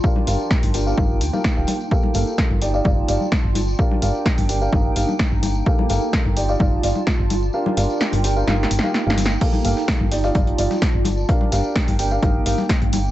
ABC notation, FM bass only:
X:1
M:4/4
L:1/16
Q:1/4=128
K:Bb
V:1 name="FM bass" clef=bass
z2 G,,, z2 G,,,3 G,,,2 D,, z2 D,,, z2 | z2 G,,, z2 G,,,3 G,,,2 G,,, z2 G,,,3 | z2 G,,, z2 G,,,3 G,,,2 G,,, z2 G,,,3 | z2 G,,, z2 G,,,3 G,,,2 G,,, z2 G,,,3 |
z2 G,,, z2 G,,,3 G,,,2 G,,, z2 G,,,3 | z2 G,,, z2 G,,,3 G,,,2 G,,, z2 G,,,3 | z2 G,,, z2 G,,,3 G,,,2 G,,, z2 G,,,3 |]